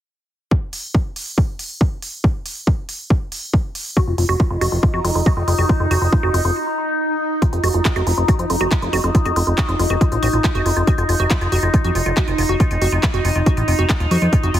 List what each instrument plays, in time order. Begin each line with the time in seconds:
0.51 kick
0.73 open hi-hat
0.95 kick
1.16 open hi-hat
1.38 kick
1.59 open hi-hat
1.81 kick
2.02 open hi-hat
2.24 kick
2.46 open hi-hat
2.67 kick
2.89 open hi-hat
3.10 kick
3.32 open hi-hat
3.54 kick
3.75 open hi-hat
3.97 synth drone D#4, synth arpeggio sound F#4, kick
4.07 analog synth bass F1, synth arpeggio sound F4
4.18 analog synth bass F1, synth arpeggio sound F4, open hi-hat
4.29 analog synth bass F1, synth arpeggio sound F#4
4.40 synth arpeggio sound F4, kick
4.51 analog synth bass F1, synth arpeggio sound F4
4.61 analog synth bass F1, synth arpeggio sound F#4, open hi-hat
4.72 analog synth bass F1, synth arpeggio sound F4
4.83 synth arpeggio sound F4, kick
4.94 analog synth bass F2, synth arpeggio sound F#4
5.05 analog synth bass F1, synth arpeggio sound F4, open hi-hat
5.15 analog synth bass F1, synth arpeggio sound F4
5.26 synth arpeggio sound F#4, kick
5.37 analog synth bass F1, synth arpeggio sound F4
5.48 analog synth bass F1, synth arpeggio sound F4, open hi-hat
5.58 analog synth bass F1, synth arpeggio sound F#4
5.69 synth arpeggio sound F4, kick
5.80 analog synth bass F1, synth arpeggio sound F4
5.91 analog synth bass F1, synth arpeggio sound F#4, open hi-hat
6.02 analog synth bass F1, synth arpeggio sound F4
6.12 synth arpeggio sound F4, kick
6.23 analog synth bass F1, synth arpeggio sound F#4
6.34 analog synth bass F1, synth arpeggio sound F4, open hi-hat
6.45 analog synth bass F1, synth arpeggio sound F4
7.42 synth drone D#4, synth arpeggio sound F4, kick, closed hi-hat
7.53 analog synth bass F1, synth arpeggio sound F4, closed hi-hat
7.64 analog synth bass F1, synth arpeggio sound F#4, open hi-hat
7.74 analog synth bass F1, synth arpeggio sound F4, closed hi-hat
7.85 synth arpeggio sound F4, kick, clap, closed hi-hat
7.96 analog synth bass F1, synth arpeggio sound F#4, closed hi-hat
8.07 analog synth bass F1, synth arpeggio sound F4, open hi-hat
8.18 analog synth bass F1, synth arpeggio sound F4, closed hi-hat
8.28 synth arpeggio sound F#4, kick, closed hi-hat
8.39 analog synth bass F2, synth arpeggio sound F4, closed hi-hat
8.50 analog synth bass F1, synth arpeggio sound F4, open hi-hat
8.61 analog synth bass F1, synth arpeggio sound F#4, closed hi-hat
8.71 synth arpeggio sound F4, kick, clap, closed hi-hat
8.82 analog synth bass F1, synth arpeggio sound F4, closed hi-hat
8.93 analog synth bass F1, synth arpeggio sound F#4, open hi-hat
9.04 analog synth bass F1, synth arpeggio sound F4, closed hi-hat
9.15 synth arpeggio sound F4, kick, closed hi-hat
9.25 analog synth bass F1, synth arpeggio sound F#4, closed hi-hat
9.36 analog synth bass F1, synth arpeggio sound F4, open hi-hat
9.47 analog synth bass F1, synth arpeggio sound F4, closed hi-hat
9.58 synth arpeggio sound F#4, kick, clap, closed hi-hat
9.69 analog synth bass F1, synth arpeggio sound F4, closed hi-hat
9.79 analog synth bass F1, synth arpeggio sound F4, open hi-hat
9.90 analog synth bass F1, synth arpeggio sound F#4, closed hi-hat
10.01 synth arpeggio sound F4, kick, closed hi-hat
10.12 analog synth bass A1, synth arpeggio sound F4, closed hi-hat
10.23 analog synth bass A1, synth arpeggio sound F#4, open hi-hat
10.33 analog synth bass A1, synth arpeggio sound F4, closed hi-hat
10.44 synth arpeggio sound F4, kick, clap, closed hi-hat
10.55 analog synth bass F1, synth arpeggio sound F#4, closed hi-hat
10.66 analog synth bass F1, synth arpeggio sound F4, open hi-hat
10.77 analog synth bass F1, synth arpeggio sound F4, closed hi-hat
10.87 synth arpeggio sound F#4, kick, closed hi-hat
10.98 analog synth bass F1, synth arpeggio sound F4, closed hi-hat
11.09 analog synth bass F1, synth arpeggio sound F4, open hi-hat
11.20 analog synth bass F1, synth arpeggio sound F#4, closed hi-hat
11.30 synth arpeggio sound F4, kick, clap, closed hi-hat
11.41 analog synth bass F1, synth arpeggio sound F4, closed hi-hat
11.52 analog synth bass F1, synth arpeggio sound F#4, open hi-hat
11.63 analog synth bass F1, synth arpeggio sound F4, closed hi-hat
11.74 synth arpeggio sound F4, kick, closed hi-hat
11.84 analog synth bass F2, synth arpeggio sound F#4, closed hi-hat
11.95 analog synth bass F1, synth arpeggio sound F4, open hi-hat
12.06 analog synth bass F1, synth arpeggio sound F4, closed hi-hat
12.17 synth arpeggio sound F#4, kick, clap, closed hi-hat
12.28 analog synth bass F1, synth arpeggio sound F4, closed hi-hat
12.38 analog synth bass F1, synth arpeggio sound F4, open hi-hat
12.49 analog synth bass F1, synth arpeggio sound F#4, closed hi-hat
12.60 synth arpeggio sound F4, kick, closed hi-hat
12.71 analog synth bass F1, synth arpeggio sound F4, closed hi-hat
12.82 analog synth bass F1, synth arpeggio sound F#4, open hi-hat
12.92 analog synth bass F1, synth arpeggio sound F4
13.03 synth arpeggio sound F4, kick, clap, closed hi-hat
13.14 analog synth bass F1, synth arpeggio sound F#4, closed hi-hat
13.25 analog synth bass F1, synth arpeggio sound F4, open hi-hat
13.36 analog synth bass F1, synth arpeggio sound F4, closed hi-hat
13.46 synth arpeggio sound F#4, kick, closed hi-hat
13.57 analog synth bass A1, synth arpeggio sound F4, closed hi-hat
13.68 analog synth bass F1, synth arpeggio sound F4, open hi-hat
13.79 analog synth bass F1, synth arpeggio sound F#4, closed hi-hat
13.89 synth arpeggio sound F4, kick, clap, closed hi-hat
14.00 analog synth bass D#1, synth arpeggio sound F4, closed hi-hat
14.11 analog synth bass F2, synth arpeggio sound F#4, open hi-hat
14.22 analog synth bass F2, synth arpeggio sound F4, closed hi-hat
14.33 synth arpeggio sound F4, kick, closed hi-hat
14.43 analog synth bass F1, synth arpeggio sound F#4, closed hi-hat
14.54 analog synth bass F1, synth arpeggio sound F4, open hi-hat